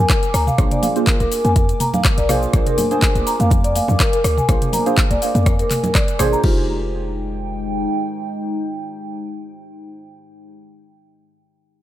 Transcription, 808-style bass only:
0, 0, Header, 1, 2, 480
1, 0, Start_track
1, 0, Tempo, 487805
1, 576, Time_signature, 4, 2, 24, 8
1, 11634, End_track
2, 0, Start_track
2, 0, Title_t, "808-style bass"
2, 0, Program_c, 0, 38
2, 335, Note_on_c, 0, 38, 97
2, 490, Note_off_c, 0, 38, 0
2, 576, Note_on_c, 0, 34, 97
2, 655, Note_off_c, 0, 34, 0
2, 1185, Note_on_c, 0, 34, 82
2, 1253, Note_off_c, 0, 34, 0
2, 1424, Note_on_c, 0, 41, 87
2, 1707, Note_off_c, 0, 41, 0
2, 2143, Note_on_c, 0, 34, 80
2, 2427, Note_off_c, 0, 34, 0
2, 2497, Note_on_c, 0, 34, 104
2, 2576, Note_off_c, 0, 34, 0
2, 3105, Note_on_c, 0, 34, 82
2, 3173, Note_off_c, 0, 34, 0
2, 3345, Note_on_c, 0, 41, 87
2, 3746, Note_off_c, 0, 41, 0
2, 3825, Note_on_c, 0, 41, 89
2, 3894, Note_off_c, 0, 41, 0
2, 4176, Note_on_c, 0, 38, 97
2, 4331, Note_off_c, 0, 38, 0
2, 4416, Note_on_c, 0, 34, 100
2, 4496, Note_off_c, 0, 34, 0
2, 5025, Note_on_c, 0, 34, 83
2, 5093, Note_off_c, 0, 34, 0
2, 5265, Note_on_c, 0, 41, 88
2, 5548, Note_off_c, 0, 41, 0
2, 6098, Note_on_c, 0, 32, 78
2, 6252, Note_off_c, 0, 32, 0
2, 6337, Note_on_c, 0, 29, 102
2, 7737, Note_off_c, 0, 29, 0
2, 11634, End_track
0, 0, End_of_file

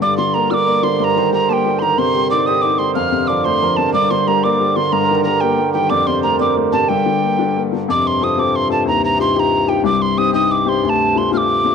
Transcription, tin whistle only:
0, 0, Header, 1, 2, 480
1, 0, Start_track
1, 0, Key_signature, -2, "minor"
1, 0, Tempo, 327511
1, 19, Time_signature, 6, 3, 24, 8
1, 17219, End_track
2, 0, Start_track
2, 0, Title_t, "Tin whistle"
2, 0, Program_c, 0, 75
2, 30, Note_on_c, 0, 86, 87
2, 248, Note_off_c, 0, 86, 0
2, 258, Note_on_c, 0, 84, 83
2, 499, Note_on_c, 0, 82, 80
2, 521, Note_off_c, 0, 84, 0
2, 739, Note_on_c, 0, 89, 88
2, 761, Note_off_c, 0, 82, 0
2, 788, Note_on_c, 0, 86, 96
2, 802, Note_off_c, 0, 89, 0
2, 1222, Note_on_c, 0, 84, 85
2, 1244, Note_off_c, 0, 86, 0
2, 1458, Note_off_c, 0, 84, 0
2, 1458, Note_on_c, 0, 84, 82
2, 1526, Note_on_c, 0, 82, 89
2, 1541, Note_off_c, 0, 84, 0
2, 1940, Note_off_c, 0, 82, 0
2, 1957, Note_on_c, 0, 82, 84
2, 2188, Note_on_c, 0, 81, 80
2, 2210, Note_off_c, 0, 82, 0
2, 2241, Note_on_c, 0, 79, 87
2, 2256, Note_off_c, 0, 81, 0
2, 2624, Note_on_c, 0, 84, 64
2, 2646, Note_off_c, 0, 79, 0
2, 2668, Note_on_c, 0, 82, 79
2, 2690, Note_off_c, 0, 84, 0
2, 2907, Note_on_c, 0, 84, 90
2, 2929, Note_off_c, 0, 82, 0
2, 3372, Note_off_c, 0, 84, 0
2, 3381, Note_on_c, 0, 86, 83
2, 3608, Note_on_c, 0, 87, 89
2, 3630, Note_off_c, 0, 86, 0
2, 3835, Note_on_c, 0, 86, 91
2, 3857, Note_off_c, 0, 87, 0
2, 4079, Note_on_c, 0, 84, 87
2, 4101, Note_off_c, 0, 86, 0
2, 4312, Note_off_c, 0, 84, 0
2, 4320, Note_on_c, 0, 89, 94
2, 4800, Note_on_c, 0, 86, 84
2, 4822, Note_off_c, 0, 89, 0
2, 5049, Note_on_c, 0, 84, 92
2, 5071, Note_off_c, 0, 86, 0
2, 5520, Note_on_c, 0, 81, 77
2, 5542, Note_off_c, 0, 84, 0
2, 5760, Note_off_c, 0, 81, 0
2, 5768, Note_on_c, 0, 86, 96
2, 6019, Note_on_c, 0, 84, 86
2, 6041, Note_off_c, 0, 86, 0
2, 6266, Note_on_c, 0, 82, 79
2, 6288, Note_off_c, 0, 84, 0
2, 6502, Note_on_c, 0, 86, 85
2, 6524, Note_off_c, 0, 82, 0
2, 6979, Note_on_c, 0, 84, 86
2, 7001, Note_off_c, 0, 86, 0
2, 7217, Note_on_c, 0, 82, 96
2, 7239, Note_off_c, 0, 84, 0
2, 7671, Note_off_c, 0, 82, 0
2, 7679, Note_on_c, 0, 82, 81
2, 7923, Note_on_c, 0, 79, 87
2, 7945, Note_off_c, 0, 82, 0
2, 8392, Note_off_c, 0, 79, 0
2, 8401, Note_on_c, 0, 79, 82
2, 8643, Note_on_c, 0, 86, 98
2, 8665, Note_off_c, 0, 79, 0
2, 8894, Note_on_c, 0, 84, 87
2, 8916, Note_off_c, 0, 86, 0
2, 9122, Note_off_c, 0, 84, 0
2, 9131, Note_on_c, 0, 82, 80
2, 9361, Note_off_c, 0, 82, 0
2, 9384, Note_on_c, 0, 86, 84
2, 9608, Note_off_c, 0, 86, 0
2, 9857, Note_on_c, 0, 81, 75
2, 10092, Note_on_c, 0, 79, 74
2, 10114, Note_off_c, 0, 81, 0
2, 11180, Note_off_c, 0, 79, 0
2, 11581, Note_on_c, 0, 86, 84
2, 11829, Note_on_c, 0, 84, 81
2, 11851, Note_off_c, 0, 86, 0
2, 12071, Note_on_c, 0, 87, 79
2, 12093, Note_off_c, 0, 84, 0
2, 12301, Note_on_c, 0, 86, 80
2, 12323, Note_off_c, 0, 87, 0
2, 12542, Note_on_c, 0, 84, 80
2, 12564, Note_off_c, 0, 86, 0
2, 12763, Note_off_c, 0, 84, 0
2, 12772, Note_on_c, 0, 81, 77
2, 12982, Note_off_c, 0, 81, 0
2, 13008, Note_on_c, 0, 82, 90
2, 13220, Note_off_c, 0, 82, 0
2, 13257, Note_on_c, 0, 82, 84
2, 13465, Note_off_c, 0, 82, 0
2, 13497, Note_on_c, 0, 84, 88
2, 13719, Note_off_c, 0, 84, 0
2, 13719, Note_on_c, 0, 84, 77
2, 13769, Note_on_c, 0, 82, 83
2, 13784, Note_off_c, 0, 84, 0
2, 14198, Note_on_c, 0, 79, 74
2, 14220, Note_off_c, 0, 82, 0
2, 14431, Note_off_c, 0, 79, 0
2, 14438, Note_on_c, 0, 86, 94
2, 14682, Note_on_c, 0, 84, 86
2, 14704, Note_off_c, 0, 86, 0
2, 14918, Note_on_c, 0, 87, 92
2, 14940, Note_off_c, 0, 84, 0
2, 15146, Note_off_c, 0, 87, 0
2, 15155, Note_on_c, 0, 87, 91
2, 15407, Note_on_c, 0, 86, 85
2, 15429, Note_off_c, 0, 87, 0
2, 15664, Note_on_c, 0, 84, 87
2, 15686, Note_off_c, 0, 86, 0
2, 15906, Note_off_c, 0, 84, 0
2, 15906, Note_on_c, 0, 84, 86
2, 15967, Note_on_c, 0, 81, 94
2, 15982, Note_off_c, 0, 84, 0
2, 16384, Note_on_c, 0, 84, 81
2, 16405, Note_off_c, 0, 81, 0
2, 16603, Note_off_c, 0, 84, 0
2, 16618, Note_on_c, 0, 89, 83
2, 16670, Note_on_c, 0, 86, 90
2, 16685, Note_off_c, 0, 89, 0
2, 17219, Note_off_c, 0, 86, 0
2, 17219, End_track
0, 0, End_of_file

